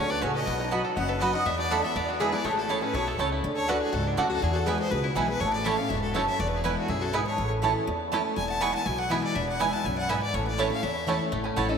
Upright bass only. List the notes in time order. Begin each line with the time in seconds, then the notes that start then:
Already playing: D2
0.23 C#2
0.47 B1
0.97 F#1
1.46 E2
1.96 E2
2.45 A1
2.94 B1
3.18 C#2
3.43 D2
3.93 C#2
4.18 D2
4.43 E2
4.91 C#2
5.16 B1
5.41 A1
5.90 E1
6.39 E1
6.89 B1
7.38 A1
7.88 E2
8.37 E1
8.86 B1
9.35 E1
9.85 B1
10.34 A1
10.83 E2
11.32 A1
11.57 A1